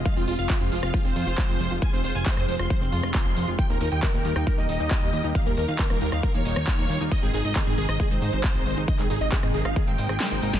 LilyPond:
<<
  \new Staff \with { instrumentName = "Supersaw synth" } { \time 4/4 \key f \minor \tempo 4 = 136 f''16 f'16 f'16 f''16 f'16 f'16 f'16 f''16 f'16 c''4. r16 | aes''16 c''16 c''16 aes''16 c''16 c''16 c''16 c'''16 c''16 c'''4. r16 | g''16 bes'16 bes'16 g''16 bes'16 bes'16 bes'16 g''16 bes'16 ees''4. r16 | f''16 bes'16 bes'16 f''16 bes'16 bes'16 bes'16 f''16 bes'16 des''4. r16 |
ees''16 aes'16 aes'16 ees''16 aes'16 aes'16 aes'16 ees''16 aes'16 c''4. r16 | ees''16 aes'16 aes'16 ees''16 aes'16 aes'16 aes'16 f''16 aes'16 g''4. r16 | }
  \new Staff \with { instrumentName = "Synth pluck" } { \time 4/4 \key f \minor f16 c'16 f'16 f'16 f16 c'16 f16 f'16 f16 c'16 f'16 f'16 f16 c'16 f16 f'16 | f16 c'16 f'16 f'16 f16 c'16 f16 f'16 f16 c'16 f'16 f'16 f16 c'16 f16 f'16 | ees16 bes16 ees'16 ees'16 ees16 bes16 ees16 ees'16 ees16 bes16 ees'16 ees'16 ees16 bes16 ees16 ees'16 | ees16 bes16 ees'16 ees'16 ees16 bes16 ees16 ees'16 ees16 bes16 ees'16 ees'16 ees16 bes16 ees16 ees'16 |
ees16 c'16 ees'16 ees'16 ees16 c'16 ees16 ees'16 ees16 c'16 ees'16 ees'16 ees16 c'16 ees16 ees'16 | ees16 c'16 ees'16 ees'16 ees16 c'16 ees16 ees'16 ees16 c'16 c'16 aes'16 aes16 c''16 ees'16 aes'16 | }
  \new Staff \with { instrumentName = "Analog synth pad" } { \clef bass \time 4/4 \key f \minor <c f aes f'>8 r16 <c f aes f'>8 <c f aes f'>8 <c f aes f'>8 r16 <c f aes f'>8 <c f aes f'>8 <c f aes f'>8 | <c f aes f'>8 r16 <c f aes f'>8 <c f aes f'>8 <c f aes f'>8 r16 <c f aes f'>8 <c f aes f'>8 <c f aes f'>8 | <ees g bes g'>8 r16 <ees g bes g'>8 <ees g bes g'>8 <ees g bes g'>8 r16 <ees g bes g'>8 <ees g bes g'>8 <ees g bes g'>8 | <ees g bes f'>8 r16 <ees g bes f'>8 <ees g bes f'>8 <ees g bes f'>8 r16 <ees g bes f'>8 <ees g bes f'>8 <ees g bes f'>8 |
<c ees aes ees'>8 r16 <c ees aes ees'>8 <c ees aes ees'>8 <c ees aes ees'>8 r16 <c ees aes ees'>8 <c ees aes ees'>8 <c ees aes ees'>8 | <c ees bes ees'>8 r16 <c ees bes ees'>8 <c ees bes ees'>8 <c ees bes ees'>8 r16 <c ees bes ees'>8 <c ees bes ees'>8 <c ees bes ees'>8 | }
  \new Staff \with { instrumentName = "Analog synth bass" } { \clef bass \time 4/4 \key f \minor r16 f,,16 f,,16 f,,16 r16 f,16 f,,16 f,,16 r16 f,,16 f,16 f,,16 r16 f,,16 f,,16 f,,16 | r16 f,,16 f,,16 f,,16 r16 f,16 f,,16 f,,16 r16 f,,16 f,16 f,,16 r16 f,,16 f,,16 f,,16 | r16 ees,16 ees,16 ees,16 r16 ees,,16 ees,16 ees,16 r16 ees,16 ees,,16 ees,16 r16 ees,16 ees,16 ees,16 | r16 ees,16 ees,16 ees,16 r16 ees,,16 ees,16 ees,16 r16 ees,16 ees,,16 ees,16 r16 ees,16 ees,16 ees,16 |
r16 aes,,16 aes,,16 aes,,16 r16 aes,16 aes,,16 aes,,16 r16 aes,,16 aes,16 aes,,16 r16 aes,,16 aes,,16 aes,,16 | r16 aes,,16 aes,,16 aes,,16 r16 aes,16 aes,,16 aes,,16 r16 aes,,16 aes,,16 aes,,16 r16 aes,,16 aes,,16 aes,,16 | }
  \new DrumStaff \with { instrumentName = "Drums" } \drummode { \time 4/4 <hh bd>16 hh16 hho16 hh16 <hc hh bd>16 hh16 hho16 <hh ss>16 <hh bd>16 hh16 hho16 hh16 <hc hh bd>16 hh16 hho16 hh16 | <hh bd>16 hh16 hho16 hh16 <hc hh bd>16 <hh ss>16 hho16 <hh ss>16 <hh bd>16 hh16 hho16 <hh ss>16 <hc hh bd>16 hh16 hho16 hh16 | <hh bd>16 hh16 hho16 hh16 <hc hh bd>16 hh16 hho16 <hh ss>16 <hh bd>16 hh16 hho16 hh16 <hc hh bd>16 hh16 hho16 hh16 | <hh bd>16 hh16 hho16 hh16 <hc hh bd>16 <hh ss>16 hho16 <hh ss>16 <hh bd>16 hh16 hho16 <hh ss>16 <hc hh bd>16 hh16 hho16 hh16 |
<hh bd>16 hh16 hho16 hh16 <hc hh bd>16 hh16 hho16 <hh ss>16 <hh bd>16 hh16 hho16 hh16 <hc hh bd>16 hh16 hho16 hh16 | <hh bd>16 <hc hh>16 hho16 hh16 <hc hh bd>16 <hh ss>16 hho16 <hh ss>16 <hh bd>16 hh16 hho16 <hh ss>16 <hc hh sn>16 hh16 hho16 <hh sn>16 | }
>>